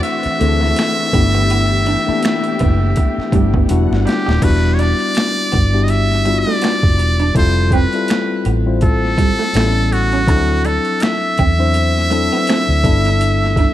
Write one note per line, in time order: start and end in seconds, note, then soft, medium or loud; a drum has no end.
0.00 3.65 E3 medium
0.00 0.40 A3 medium
0.00 0.41 C4 medium
0.00 1.10 C4 medium
0.00 0.41 D4 medium
0.00 0.41 E4 medium
0.00 1.10 F#4 medium
0.00 1.15 F#4 loud
0.00 0.16 A4 medium
0.00 3.65 E5 loud
0.00 muted clean electric guitar stroke soft
0.00 closed hi-hat medium
0.23 muted fingered electric bass stroke soft
0.23 closed hi-hat soft
0.40 0.72 D2 medium
0.40 1.00 A3 medium
0.40 0.52 A3 medium
0.40 1.00 C4 medium
0.40 1.00 D4 medium
0.40 1.01 E4 medium
0.40 0.48 G#4 medium
0.40 closed hi-hat medium
0.48 1.04 A4 medium
0.61 0.70 A3 medium
0.61 snare soft
0.76 finger snap medium
0.76 muted clean electric guitar stroke soft
0.76 snare loud
0.76 closed hi-hat medium
1.13 1.95 G1 medium
1.13 1.86 A3 medium
1.13 1.86 B3 medium
1.13 3.67 B3 medium
1.13 1.26 B3 medium
1.13 1.87 D4 medium
1.13 1.87 E4 medium
1.13 3.67 G4 medium
1.13 1.87 G4 medium
1.13 kick loud
1.13 closed hi-hat medium
1.35 1.44 B3 medium
1.50 1.63 B3 medium
1.50 closed hi-hat medium
1.86 1.99 D4 medium
1.86 closed hi-hat soft
2.07 3.07 A3 medium
2.07 2.13 A#3 medium
2.07 3.08 D4 medium
2.07 3.08 E4 medium
2.07 3.08 A4 medium
2.07 muted fingered electric bass stroke soft
2.14 3.11 B3 medium
2.23 finger snap medium
2.23 snare loud
2.23 closed hi-hat medium
2.44 closed hi-hat soft
2.59 2.92 F#1 medium
2.59 2.72 B3 medium
2.59 kick medium
2.59 closed hi-hat medium
2.96 muted clean electric guitar stroke soft
2.96 kick medium
2.96 closed hi-hat medium
3.18 muted fingered electric bass stroke soft
3.18 snare soft
3.32 3.64 G1 medium
3.32 3.46 G3 medium
3.32 3.69 A3 medium
3.32 3.69 B3 medium
3.32 3.69 D4 medium
3.32 3.70 E4 medium
3.32 3.70 G4 medium
3.32 kick medium
3.32 closed hi-hat medium
3.54 3.63 B3 medium
3.54 kick medium
3.69 3.88 E1 medium
3.69 4.42 D3 medium
3.69 4.30 G3 medium
3.69 4.42 G3 medium
3.69 4.30 B3 medium
3.69 4.30 D4 medium
3.69 4.30 E4 medium
3.69 4.30 F#4 medium
3.69 4.42 F#5 medium
3.69 muted clean electric guitar stroke soft
3.69 closed hi-hat medium
3.91 4.04 G1 medium
3.91 snare medium
4.06 4.18 D4 medium
4.06 4.45 G4 medium
4.06 snare medium
4.06 closed hi-hat medium
4.26 4.41 D#1 medium
4.26 4.36 G4 medium
4.26 snare medium
4.42 4.92 E1 medium
4.42 5.45 G3 medium
4.42 5.45 B3 medium
4.42 5.45 D4 medium
4.42 5.46 E4 medium
4.42 5.46 F#4 medium
4.42 4.75 B4 medium
4.42 kick loud
4.42 closed hi-hat medium
4.42 crash medium
4.74 4.81 C#5 medium
4.79 4.91 D4 medium
4.79 5.85 D5 loud
4.79 closed hi-hat medium
4.99 closed hi-hat soft
5.15 finger snap medium
5.15 snare loud
5.15 closed hi-hat medium
5.52 6.43 G1 medium
5.52 5.64 B3 medium
5.52 kick medium
5.52 closed hi-hat medium
5.73 6.15 G3 medium
5.73 6.16 B3 medium
5.73 6.16 D4 medium
5.73 6.16 E4 medium
5.73 6.16 G4 medium
5.84 5.92 D#5 medium
5.88 6.41 E5 loud
5.88 muted clean electric guitar stroke soft
5.88 closed hi-hat medium
6.12 snare soft
6.25 7.14 G3 medium
6.25 6.38 G3 medium
6.25 7.14 B3 medium
6.25 7.14 D4 medium
6.25 7.15 E4 medium
6.25 6.34 F4 medium
6.25 closed hi-hat medium
6.34 7.18 F#4 medium
6.39 7.36 D5 medium
6.47 6.56 A3 medium
6.47 snare soft
6.62 6.74 B3 medium
6.62 finger snap medium
6.62 snare loud
6.62 closed hi-hat medium
6.83 7.00 F#1 medium
6.83 kick medium
6.98 7.31 E1 medium
6.98 muted clean electric guitar stroke soft
6.98 closed hi-hat medium
7.19 7.29 D4 medium
7.19 closed hi-hat soft
7.35 7.85 F1 loud
7.35 7.80 G3 medium
7.35 7.80 C4 medium
7.35 7.80 E4 medium
7.35 7.80 F4 medium
7.35 7.81 A4 medium
7.35 7.76 C5 loud
7.35 kick loud
7.35 closed hi-hat medium
7.71 7.85 C4 medium
7.71 8.46 B4 medium
7.71 kick medium
7.71 closed hi-hat medium
7.93 8.49 G3 medium
7.93 8.49 C4 medium
7.93 8.49 E4 medium
7.93 8.49 F4 medium
7.93 8.50 A4 medium
7.93 closed hi-hat soft
8.08 finger snap medium
8.08 snare loud
8.08 closed hi-hat medium
8.45 9.35 A1 medium
8.45 8.58 B3 medium
8.45 closed hi-hat medium
8.66 9.53 G3 medium
8.66 9.55 C4 medium
8.66 9.55 E4 medium
8.66 9.55 F4 medium
8.66 9.56 C5 medium
8.81 9.94 A4 loud
8.81 muted clean electric guitar stroke soft
8.81 kick medium
8.81 closed hi-hat medium
9.05 snare soft
9.18 9.31 G3 medium
9.18 kick medium
9.18 closed hi-hat medium
9.39 9.48 A3 medium
9.39 snare soft
9.54 10.28 A1 loud
9.54 10.15 G3 medium
9.54 10.15 B3 medium
9.54 9.67 B3 medium
9.54 10.15 C#4 medium
9.54 10.16 E4 medium
9.54 10.16 A4 medium
9.54 finger snap medium
9.54 snare loud
9.54 closed hi-hat medium
9.92 10.67 F#4 loud
9.92 muted clean electric guitar stroke soft
9.92 closed hi-hat medium
10.12 10.22 C#4 medium
10.12 closed hi-hat soft
10.28 10.78 D2 loud
10.28 10.35 F3 medium
10.28 11.30 C4 medium
10.28 11.31 D4 medium
10.28 11.31 E4 medium
10.28 11.31 A4 loud
10.28 kick loud
10.28 closed hi-hat medium
10.34 11.33 F#3 medium
10.65 10.77 D4 medium
10.65 11.04 A4 medium
10.65 closed hi-hat medium
10.85 closed hi-hat soft
11.00 13.74 E5 loud
11.00 finger snap medium
11.00 snare loud
11.00 closed hi-hat medium
11.38 12.28 E2 medium
11.38 11.51 C4 medium
11.38 kick medium
11.38 closed hi-hat medium
11.58 12.01 F#3 medium
11.58 12.01 C4 medium
11.58 12.01 D4 medium
11.58 12.01 E4 medium
11.58 12.02 C5 medium
11.74 muted clean electric guitar stroke soft
11.74 closed hi-hat medium
11.98 snare soft
12.10 12.84 F#3 medium
12.10 12.23 A3 medium
12.10 12.84 C4 medium
12.10 12.84 D4 medium
12.10 12.84 E4 medium
12.10 12.85 A4 loud
12.10 closed hi-hat medium
12.32 12.42 B3 medium
12.32 snare soft
12.47 12.61 C4 medium
12.47 finger snap medium
12.47 snare loud
12.47 closed hi-hat medium
12.69 12.86 D2 medium
12.84 13.65 G1 medium
12.84 13.57 G3 medium
12.84 13.57 B3 medium
12.84 13.58 D4 medium
12.84 13.58 E4 medium
12.84 13.58 A4 loud
12.84 muted clean electric guitar stroke soft
12.84 kick loud
12.84 closed hi-hat medium
13.05 13.15 D4 medium
13.05 closed hi-hat soft
13.21 closed hi-hat medium
13.44 snare soft
13.56 13.70 D4 medium
13.56 kick medium
13.56 closed hi-hat medium
13.61 snare soft